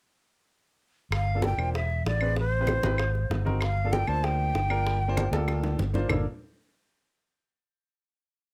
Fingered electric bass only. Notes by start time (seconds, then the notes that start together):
1.11 G1
1.58 E1
2.05 A1
2.83 G#1
3.30 G1
4.08 D2
4.54 G1
5.31 D2
5.78 G1
6.09 G1